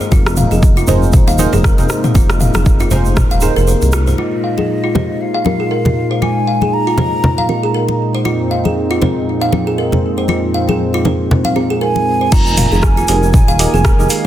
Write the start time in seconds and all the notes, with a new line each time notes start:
Already playing: G#3
0.00 C5, djembe tone, shaker
0.12 F1 C3 A#3 D#4 F4, kick, muted conga, djembe bass, shaker
0.26 cross-stick, djembe tone, shaker
0.37 F5, mid tom, shaker
0.51 F1 G#4, muted conga, high conga, shaker
0.62 kick, djembe tone, shaker
0.77 F4, shaker
0.87 F1 D#4 G#4 A#4 C5, muted conga, djembe tone, high conga, djembe bass, low conga, shaker
1.02 shaker
1.13 kick, mid tom, high conga, shaker
1.27 D#1 F5, djembe slap, djembe tone, shaker
1.39 D#4 F4 G#4 A#4 C5, muted conga, high conga, shaker
1.53 F1 G#4, djembe slap, djembe tone, shaker
1.64 A#4, kick, cross-stick, shaker
1.78 F1 D#4 G#4 A#4 C5, muted conga, low conga, shaker
1.89 cross-stick, djembe tone, shaker
2.04 C5, mid tom, shaker
2.15 F1 F4, kick, muted conga, djembe tone, djembe bass, shaker
2.30 cross-stick, djembe slap, shaker
2.40 F5, mid tom, shaker
2.54 F1 G#4, cross-stick, muted conga, djembe tone, high conga, shaker
2.66 kick, shaker
2.80 F4, djembe slap, djembe tone, shaker
2.91 F1 D#4 G#4 A#4 C5, muted conga, high conga, djembe bass, low conga, shaker
3.05 shaker
3.16 kick, cross-stick, mid tom, djembe tone, low conga, shaker
3.31 D#1 F5, high conga, shaker
3.41 D#4 G#4 A#4 C5, muted conga, djembe tone, shaker
3.56 F1 A#4, shaker
3.67 C5, shaker
3.82 C2, muted conga, djembe tone, shaker
3.92 F4, cross-stick, shaker
4.07 C5, djembe tone, shaker
4.18 A#2 G#3 D#4 F4 D#5, crash, muted conga
4.44 F5
4.58 G#4, muted conga, high conga
4.84 F4
4.95 F3 C4 D#4 G4 G#4 A#4 C5, muted conga, high conga, low conga
5.21 F5
5.34 F5
5.45 F3 C4 D#4 F4 G4 G#4 A#4, muted conga, high conga
5.60 G#4
5.71 A#4
5.85 F3 C4 D#4 G4 G#4 A#4, muted conga, low conga
6.11 C5
6.22 F4 G#5, muted conga, high conga
6.47 F5
6.61 G#4, muted conga, high conga
6.73 A#5
6.87 F4
6.98 F3 C4 D#4 G4 G#4 A#4 C5, muted conga, high conga, low conga
7.24 low conga
7.38 F5, high conga
7.49 F3 C4 D#4 F4 G4 G#4 A#4, muted conga
7.63 G#4
7.74 A#4
7.89 muted conga
8.15 C5
8.25 F2 G#3 C4 F4, muted conga
8.51 F5
8.65 G#4, muted conga, high conga
8.91 F4
9.02 F3 C4 D#4 G#4 A#4 C5, muted conga, high conga, low conga
9.41 F5
9.52 F3 C4 D#4 F4 G#4 A#4, muted conga, high conga
9.67 G#4
9.78 A#4
9.92 F3 C4 D#4 G#4 A#4, muted conga, low conga
10.18 C5
10.28 F4, muted conga, high conga
10.54 F5
10.69 G#4, muted conga, high conga
10.94 F4
11.05 F3 C4 D#4 G#4 A#4 C5, muted conga, high conga, low conga
11.31 low conga
11.44 F5, high conga
11.56 F3 C4 D#4 F4 G#4 A#4, muted conga
11.70 G#4
11.81 A#4 G#5
11.96 muted conga
12.21 C5
12.32 F1 D#3 G#3 A#3 F4 G#5 A#5, kick, crash, shaker
12.46 shaker
12.57 F5, open hi-hat, mid tom, shaker
12.72 F1 G#4, shaker
12.82 G#5, kick, cross-stick, shaker
12.97 F4, shaker
13.08 F1 D#4 G4 G#4 A#4 C5, open hi-hat, shaker
13.23 shaker
13.33 G#5, kick, mid tom, shaker
13.48 D#1 F5, shaker
13.59 D#4 F4 G4 G#4 A#4, open hi-hat, shaker
13.74 F1 G#4, shaker
13.85 A#4, kick, cross-stick, shaker
13.99 F1 D#4 G4 G#4 A#4, shaker
14.09 F5, open hi-hat, shaker